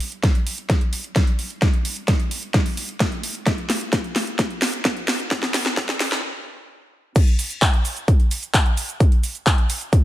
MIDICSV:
0, 0, Header, 1, 2, 480
1, 0, Start_track
1, 0, Tempo, 461538
1, 1685, Time_signature, 4, 2, 24, 8
1, 10443, End_track
2, 0, Start_track
2, 0, Title_t, "Drums"
2, 4, Note_on_c, 9, 46, 103
2, 108, Note_off_c, 9, 46, 0
2, 125, Note_on_c, 9, 42, 41
2, 229, Note_off_c, 9, 42, 0
2, 245, Note_on_c, 9, 36, 108
2, 245, Note_on_c, 9, 38, 49
2, 245, Note_on_c, 9, 42, 90
2, 349, Note_off_c, 9, 36, 0
2, 349, Note_off_c, 9, 38, 0
2, 349, Note_off_c, 9, 42, 0
2, 365, Note_on_c, 9, 42, 39
2, 469, Note_off_c, 9, 42, 0
2, 484, Note_on_c, 9, 46, 106
2, 588, Note_off_c, 9, 46, 0
2, 605, Note_on_c, 9, 42, 37
2, 709, Note_off_c, 9, 42, 0
2, 724, Note_on_c, 9, 36, 115
2, 724, Note_on_c, 9, 38, 50
2, 724, Note_on_c, 9, 42, 92
2, 828, Note_off_c, 9, 36, 0
2, 828, Note_off_c, 9, 38, 0
2, 828, Note_off_c, 9, 42, 0
2, 844, Note_on_c, 9, 42, 40
2, 948, Note_off_c, 9, 42, 0
2, 964, Note_on_c, 9, 46, 101
2, 1068, Note_off_c, 9, 46, 0
2, 1084, Note_on_c, 9, 42, 40
2, 1188, Note_off_c, 9, 42, 0
2, 1204, Note_on_c, 9, 36, 107
2, 1204, Note_on_c, 9, 38, 56
2, 1204, Note_on_c, 9, 42, 95
2, 1308, Note_off_c, 9, 36, 0
2, 1308, Note_off_c, 9, 38, 0
2, 1308, Note_off_c, 9, 42, 0
2, 1324, Note_on_c, 9, 42, 40
2, 1428, Note_off_c, 9, 42, 0
2, 1444, Note_on_c, 9, 46, 100
2, 1548, Note_off_c, 9, 46, 0
2, 1564, Note_on_c, 9, 42, 36
2, 1668, Note_off_c, 9, 42, 0
2, 1684, Note_on_c, 9, 36, 114
2, 1684, Note_on_c, 9, 38, 56
2, 1684, Note_on_c, 9, 42, 91
2, 1788, Note_off_c, 9, 36, 0
2, 1788, Note_off_c, 9, 38, 0
2, 1788, Note_off_c, 9, 42, 0
2, 1804, Note_on_c, 9, 42, 37
2, 1908, Note_off_c, 9, 42, 0
2, 1924, Note_on_c, 9, 46, 104
2, 2028, Note_off_c, 9, 46, 0
2, 2044, Note_on_c, 9, 42, 39
2, 2148, Note_off_c, 9, 42, 0
2, 2164, Note_on_c, 9, 36, 118
2, 2164, Note_on_c, 9, 38, 60
2, 2164, Note_on_c, 9, 42, 92
2, 2268, Note_off_c, 9, 36, 0
2, 2268, Note_off_c, 9, 38, 0
2, 2268, Note_off_c, 9, 42, 0
2, 2284, Note_on_c, 9, 42, 40
2, 2388, Note_off_c, 9, 42, 0
2, 2404, Note_on_c, 9, 46, 112
2, 2508, Note_off_c, 9, 46, 0
2, 2524, Note_on_c, 9, 42, 37
2, 2628, Note_off_c, 9, 42, 0
2, 2644, Note_on_c, 9, 36, 124
2, 2644, Note_on_c, 9, 38, 62
2, 2644, Note_on_c, 9, 42, 89
2, 2748, Note_off_c, 9, 36, 0
2, 2748, Note_off_c, 9, 38, 0
2, 2748, Note_off_c, 9, 42, 0
2, 2764, Note_on_c, 9, 46, 60
2, 2868, Note_off_c, 9, 46, 0
2, 2884, Note_on_c, 9, 46, 110
2, 2988, Note_off_c, 9, 46, 0
2, 3004, Note_on_c, 9, 42, 40
2, 3108, Note_off_c, 9, 42, 0
2, 3124, Note_on_c, 9, 36, 115
2, 3124, Note_on_c, 9, 38, 70
2, 3124, Note_on_c, 9, 42, 93
2, 3228, Note_off_c, 9, 36, 0
2, 3228, Note_off_c, 9, 38, 0
2, 3228, Note_off_c, 9, 42, 0
2, 3244, Note_on_c, 9, 42, 40
2, 3348, Note_off_c, 9, 42, 0
2, 3364, Note_on_c, 9, 46, 109
2, 3468, Note_off_c, 9, 46, 0
2, 3484, Note_on_c, 9, 42, 36
2, 3588, Note_off_c, 9, 42, 0
2, 3604, Note_on_c, 9, 36, 123
2, 3604, Note_on_c, 9, 38, 71
2, 3604, Note_on_c, 9, 42, 90
2, 3708, Note_off_c, 9, 36, 0
2, 3708, Note_off_c, 9, 38, 0
2, 3708, Note_off_c, 9, 42, 0
2, 3724, Note_on_c, 9, 42, 36
2, 3828, Note_off_c, 9, 42, 0
2, 3844, Note_on_c, 9, 38, 77
2, 3844, Note_on_c, 9, 46, 111
2, 3948, Note_off_c, 9, 38, 0
2, 3948, Note_off_c, 9, 46, 0
2, 3964, Note_on_c, 9, 42, 39
2, 4068, Note_off_c, 9, 42, 0
2, 4084, Note_on_c, 9, 36, 118
2, 4085, Note_on_c, 9, 38, 78
2, 4085, Note_on_c, 9, 42, 91
2, 4188, Note_off_c, 9, 36, 0
2, 4189, Note_off_c, 9, 38, 0
2, 4189, Note_off_c, 9, 42, 0
2, 4205, Note_on_c, 9, 42, 40
2, 4309, Note_off_c, 9, 42, 0
2, 4324, Note_on_c, 9, 38, 79
2, 4324, Note_on_c, 9, 46, 113
2, 4428, Note_off_c, 9, 38, 0
2, 4428, Note_off_c, 9, 46, 0
2, 4444, Note_on_c, 9, 42, 37
2, 4548, Note_off_c, 9, 42, 0
2, 4564, Note_on_c, 9, 36, 125
2, 4564, Note_on_c, 9, 38, 83
2, 4564, Note_on_c, 9, 42, 92
2, 4668, Note_off_c, 9, 36, 0
2, 4668, Note_off_c, 9, 38, 0
2, 4668, Note_off_c, 9, 42, 0
2, 4685, Note_on_c, 9, 42, 38
2, 4789, Note_off_c, 9, 42, 0
2, 4804, Note_on_c, 9, 38, 87
2, 4804, Note_on_c, 9, 46, 113
2, 4908, Note_off_c, 9, 38, 0
2, 4908, Note_off_c, 9, 46, 0
2, 4924, Note_on_c, 9, 42, 39
2, 5028, Note_off_c, 9, 42, 0
2, 5044, Note_on_c, 9, 36, 117
2, 5044, Note_on_c, 9, 38, 88
2, 5044, Note_on_c, 9, 42, 88
2, 5148, Note_off_c, 9, 36, 0
2, 5148, Note_off_c, 9, 38, 0
2, 5148, Note_off_c, 9, 42, 0
2, 5164, Note_on_c, 9, 42, 39
2, 5268, Note_off_c, 9, 42, 0
2, 5284, Note_on_c, 9, 38, 89
2, 5284, Note_on_c, 9, 46, 111
2, 5388, Note_off_c, 9, 38, 0
2, 5388, Note_off_c, 9, 46, 0
2, 5404, Note_on_c, 9, 42, 35
2, 5508, Note_off_c, 9, 42, 0
2, 5524, Note_on_c, 9, 36, 123
2, 5524, Note_on_c, 9, 38, 87
2, 5524, Note_on_c, 9, 42, 88
2, 5628, Note_off_c, 9, 36, 0
2, 5628, Note_off_c, 9, 38, 0
2, 5628, Note_off_c, 9, 42, 0
2, 5644, Note_on_c, 9, 38, 79
2, 5644, Note_on_c, 9, 42, 38
2, 5748, Note_off_c, 9, 38, 0
2, 5748, Note_off_c, 9, 42, 0
2, 5764, Note_on_c, 9, 38, 94
2, 5764, Note_on_c, 9, 46, 109
2, 5868, Note_off_c, 9, 38, 0
2, 5868, Note_off_c, 9, 46, 0
2, 5884, Note_on_c, 9, 38, 81
2, 5884, Note_on_c, 9, 42, 38
2, 5988, Note_off_c, 9, 38, 0
2, 5988, Note_off_c, 9, 42, 0
2, 6004, Note_on_c, 9, 36, 121
2, 6004, Note_on_c, 9, 38, 94
2, 6004, Note_on_c, 9, 42, 88
2, 6108, Note_off_c, 9, 36, 0
2, 6108, Note_off_c, 9, 38, 0
2, 6108, Note_off_c, 9, 42, 0
2, 6124, Note_on_c, 9, 38, 90
2, 6124, Note_on_c, 9, 42, 39
2, 6228, Note_off_c, 9, 38, 0
2, 6228, Note_off_c, 9, 42, 0
2, 6244, Note_on_c, 9, 38, 101
2, 6244, Note_on_c, 9, 46, 114
2, 6348, Note_off_c, 9, 38, 0
2, 6348, Note_off_c, 9, 46, 0
2, 6364, Note_on_c, 9, 38, 84
2, 6364, Note_on_c, 9, 42, 37
2, 6468, Note_off_c, 9, 38, 0
2, 6468, Note_off_c, 9, 42, 0
2, 7444, Note_on_c, 9, 36, 119
2, 7445, Note_on_c, 9, 42, 96
2, 7445, Note_on_c, 9, 49, 102
2, 7445, Note_on_c, 9, 82, 33
2, 7548, Note_off_c, 9, 36, 0
2, 7549, Note_off_c, 9, 42, 0
2, 7549, Note_off_c, 9, 49, 0
2, 7549, Note_off_c, 9, 82, 0
2, 7564, Note_on_c, 9, 42, 40
2, 7668, Note_off_c, 9, 42, 0
2, 7685, Note_on_c, 9, 46, 108
2, 7685, Note_on_c, 9, 82, 80
2, 7789, Note_off_c, 9, 46, 0
2, 7789, Note_off_c, 9, 82, 0
2, 7805, Note_on_c, 9, 42, 41
2, 7805, Note_on_c, 9, 82, 45
2, 7909, Note_off_c, 9, 42, 0
2, 7909, Note_off_c, 9, 82, 0
2, 7924, Note_on_c, 9, 36, 116
2, 7924, Note_on_c, 9, 39, 123
2, 7924, Note_on_c, 9, 42, 97
2, 7925, Note_on_c, 9, 82, 34
2, 8028, Note_off_c, 9, 36, 0
2, 8028, Note_off_c, 9, 39, 0
2, 8028, Note_off_c, 9, 42, 0
2, 8029, Note_off_c, 9, 82, 0
2, 8045, Note_on_c, 9, 42, 43
2, 8149, Note_off_c, 9, 42, 0
2, 8164, Note_on_c, 9, 46, 107
2, 8165, Note_on_c, 9, 82, 80
2, 8268, Note_off_c, 9, 46, 0
2, 8269, Note_off_c, 9, 82, 0
2, 8285, Note_on_c, 9, 42, 40
2, 8285, Note_on_c, 9, 82, 45
2, 8389, Note_off_c, 9, 42, 0
2, 8389, Note_off_c, 9, 82, 0
2, 8404, Note_on_c, 9, 36, 119
2, 8405, Note_on_c, 9, 42, 95
2, 8405, Note_on_c, 9, 82, 35
2, 8508, Note_off_c, 9, 36, 0
2, 8509, Note_off_c, 9, 42, 0
2, 8509, Note_off_c, 9, 82, 0
2, 8525, Note_on_c, 9, 42, 40
2, 8629, Note_off_c, 9, 42, 0
2, 8645, Note_on_c, 9, 46, 108
2, 8645, Note_on_c, 9, 82, 83
2, 8749, Note_off_c, 9, 46, 0
2, 8749, Note_off_c, 9, 82, 0
2, 8765, Note_on_c, 9, 42, 43
2, 8765, Note_on_c, 9, 82, 46
2, 8869, Note_off_c, 9, 42, 0
2, 8869, Note_off_c, 9, 82, 0
2, 8884, Note_on_c, 9, 36, 114
2, 8884, Note_on_c, 9, 39, 126
2, 8885, Note_on_c, 9, 42, 98
2, 8885, Note_on_c, 9, 82, 35
2, 8988, Note_off_c, 9, 36, 0
2, 8988, Note_off_c, 9, 39, 0
2, 8989, Note_off_c, 9, 42, 0
2, 8989, Note_off_c, 9, 82, 0
2, 9005, Note_on_c, 9, 42, 40
2, 9109, Note_off_c, 9, 42, 0
2, 9125, Note_on_c, 9, 46, 107
2, 9125, Note_on_c, 9, 82, 78
2, 9229, Note_off_c, 9, 46, 0
2, 9229, Note_off_c, 9, 82, 0
2, 9245, Note_on_c, 9, 42, 38
2, 9245, Note_on_c, 9, 82, 45
2, 9349, Note_off_c, 9, 42, 0
2, 9349, Note_off_c, 9, 82, 0
2, 9364, Note_on_c, 9, 36, 125
2, 9365, Note_on_c, 9, 42, 92
2, 9365, Note_on_c, 9, 82, 32
2, 9468, Note_off_c, 9, 36, 0
2, 9469, Note_off_c, 9, 42, 0
2, 9469, Note_off_c, 9, 82, 0
2, 9485, Note_on_c, 9, 42, 39
2, 9589, Note_off_c, 9, 42, 0
2, 9605, Note_on_c, 9, 46, 113
2, 9605, Note_on_c, 9, 82, 75
2, 9709, Note_off_c, 9, 46, 0
2, 9709, Note_off_c, 9, 82, 0
2, 9725, Note_on_c, 9, 42, 40
2, 9725, Note_on_c, 9, 82, 43
2, 9829, Note_off_c, 9, 42, 0
2, 9829, Note_off_c, 9, 82, 0
2, 9844, Note_on_c, 9, 36, 122
2, 9844, Note_on_c, 9, 39, 121
2, 9845, Note_on_c, 9, 42, 94
2, 9845, Note_on_c, 9, 82, 33
2, 9948, Note_off_c, 9, 36, 0
2, 9948, Note_off_c, 9, 39, 0
2, 9949, Note_off_c, 9, 42, 0
2, 9949, Note_off_c, 9, 82, 0
2, 9965, Note_on_c, 9, 42, 41
2, 10069, Note_off_c, 9, 42, 0
2, 10085, Note_on_c, 9, 46, 113
2, 10085, Note_on_c, 9, 82, 78
2, 10189, Note_off_c, 9, 46, 0
2, 10189, Note_off_c, 9, 82, 0
2, 10205, Note_on_c, 9, 42, 39
2, 10205, Note_on_c, 9, 82, 43
2, 10309, Note_off_c, 9, 42, 0
2, 10309, Note_off_c, 9, 82, 0
2, 10324, Note_on_c, 9, 36, 127
2, 10325, Note_on_c, 9, 42, 96
2, 10325, Note_on_c, 9, 82, 33
2, 10428, Note_off_c, 9, 36, 0
2, 10429, Note_off_c, 9, 42, 0
2, 10429, Note_off_c, 9, 82, 0
2, 10443, End_track
0, 0, End_of_file